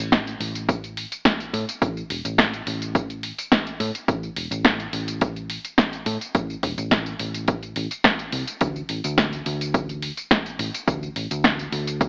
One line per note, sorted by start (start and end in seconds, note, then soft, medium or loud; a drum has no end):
0.00 0.33 A1 medium
0.12 kick loud
0.12 snare loud
0.12 closed hi-hat medium
0.12 tambourine medium
0.27 closed hi-hat soft
0.27 tambourine soft
0.40 1.04 A1 medium
0.40 open hi-hat medium
0.55 closed hi-hat medium
0.55 tambourine medium
0.69 kick loud
0.69 closed hi-hat medium
0.69 tambourine medium
0.84 closed hi-hat soft
0.84 tambourine soft
0.97 open hi-hat loud
1.12 closed hi-hat medium
1.12 tambourine medium
1.25 kick loud
1.25 snare loud
1.25 closed hi-hat medium
1.25 tambourine medium
1.40 closed hi-hat soft
1.40 tambourine soft
1.53 1.64 A2 loud
1.53 open hi-hat medium
1.69 closed hi-hat medium
1.69 tambourine medium
1.82 2.01 A1 loud
1.82 kick loud
1.82 closed hi-hat medium
1.82 tambourine medium
1.97 tambourine soft
2.10 2.20 E1 medium
2.10 open hi-hat loud
2.25 2.60 A1 medium
2.25 closed hi-hat medium
2.25 tambourine medium
2.38 kick loud
2.38 snare loud
2.38 closed hi-hat medium
2.38 tambourine medium
2.54 closed hi-hat soft
2.54 tambourine soft
2.67 3.31 A1 medium
2.67 open hi-hat medium
2.82 closed hi-hat medium
2.82 tambourine medium
2.95 kick loud
2.95 closed hi-hat medium
2.95 tambourine medium
3.10 closed hi-hat soft
3.10 tambourine soft
3.23 open hi-hat loud
3.38 closed hi-hat medium
3.38 tambourine medium
3.52 kick loud
3.52 snare loud
3.52 closed hi-hat medium
3.52 tambourine medium
3.67 closed hi-hat soft
3.67 tambourine soft
3.80 3.90 A2 loud
3.80 open hi-hat loud
3.95 closed hi-hat medium
3.95 tambourine medium
4.08 4.28 A1 loud
4.08 kick loud
4.08 closed hi-hat medium
4.08 tambourine medium
4.23 tambourine soft
4.36 4.47 E1 medium
4.36 open hi-hat loud
4.51 4.86 A1 medium
4.51 closed hi-hat medium
4.51 tambourine medium
4.65 kick loud
4.65 snare loud
4.65 closed hi-hat medium
4.65 tambourine medium
4.80 closed hi-hat soft
4.80 tambourine soft
4.93 5.57 A1 medium
4.93 open hi-hat loud
5.08 closed hi-hat medium
5.08 tambourine medium
5.21 kick loud
5.21 closed hi-hat medium
5.21 tambourine medium
5.36 closed hi-hat soft
5.36 tambourine soft
5.50 open hi-hat loud
5.65 closed hi-hat medium
5.65 tambourine medium
5.78 kick loud
5.78 snare loud
5.78 closed hi-hat medium
5.78 tambourine medium
5.93 closed hi-hat soft
5.93 tambourine soft
6.06 6.16 A2 medium
6.06 open hi-hat loud
6.21 closed hi-hat medium
6.21 tambourine medium
6.35 6.54 A1 medium
6.35 kick loud
6.35 closed hi-hat medium
6.35 tambourine medium
6.50 tambourine soft
6.63 6.73 E1 medium
6.63 kick medium
6.63 open hi-hat loud
6.78 7.13 A1 medium
6.78 closed hi-hat soft
6.78 tambourine medium
6.91 kick loud
6.91 snare loud
6.91 closed hi-hat medium
6.91 tambourine medium
7.06 closed hi-hat soft
7.06 tambourine soft
7.19 7.75 A1 medium
7.19 open hi-hat medium
7.34 closed hi-hat medium
7.34 tambourine medium
7.48 kick loud
7.48 closed hi-hat medium
7.48 tambourine medium
7.63 closed hi-hat soft
7.63 tambourine soft
7.76 7.86 A1 medium
7.76 open hi-hat loud
7.91 closed hi-hat soft
7.91 tambourine medium
8.04 kick loud
8.04 snare loud
8.04 closed hi-hat medium
8.04 tambourine medium
8.19 closed hi-hat soft
8.19 tambourine soft
8.32 8.43 C2 medium
8.32 open hi-hat medium
8.47 closed hi-hat medium
8.47 tambourine medium
8.61 8.81 D2 loud
8.61 kick loud
8.61 closed hi-hat medium
8.61 tambourine medium
8.76 tambourine soft
8.89 9.00 A1 medium
8.89 open hi-hat loud
9.04 9.39 D2 medium
9.04 closed hi-hat medium
9.04 tambourine medium
9.18 kick loud
9.18 snare loud
9.18 closed hi-hat medium
9.18 tambourine medium
9.33 closed hi-hat soft
9.33 tambourine soft
9.46 10.10 D2 medium
9.46 open hi-hat medium
9.61 closed hi-hat medium
9.61 tambourine medium
9.74 kick loud
9.74 closed hi-hat medium
9.74 tambourine medium
9.89 closed hi-hat soft
9.89 tambourine soft
10.02 open hi-hat loud
10.17 closed hi-hat medium
10.17 tambourine medium
10.31 kick loud
10.31 snare loud
10.31 closed hi-hat medium
10.31 tambourine medium
10.46 closed hi-hat soft
10.46 tambourine soft
10.59 10.69 A1 medium
10.59 open hi-hat loud
10.74 closed hi-hat soft
10.74 tambourine medium
10.88 11.07 D2 loud
10.88 kick loud
10.88 closed hi-hat medium
10.88 tambourine medium
11.03 tambourine soft
11.16 11.26 A1 medium
11.16 open hi-hat loud
11.31 11.66 D2 medium
11.31 closed hi-hat medium
11.31 tambourine medium
11.44 kick loud
11.44 snare loud
11.44 closed hi-hat medium
11.44 tambourine medium
11.59 closed hi-hat soft
11.59 tambourine soft
11.72 12.09 D2 medium
11.72 open hi-hat medium
11.87 closed hi-hat medium
11.87 tambourine medium
12.01 kick loud
12.01 closed hi-hat medium
12.01 tambourine medium